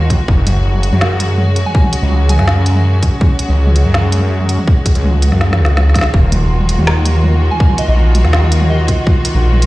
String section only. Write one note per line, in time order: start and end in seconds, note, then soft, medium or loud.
0.00 0.24 D#3 medium
0.00 0.24 A#3 medium
0.00 0.24 F4 medium
0.00 6.10 F#4 medium
0.28 6.10 G#3 medium
0.28 6.10 C#4 medium
6.13 9.66 D#3 medium
6.13 9.66 A#3 medium
6.13 9.66 F4 medium
6.13 9.66 F#4 medium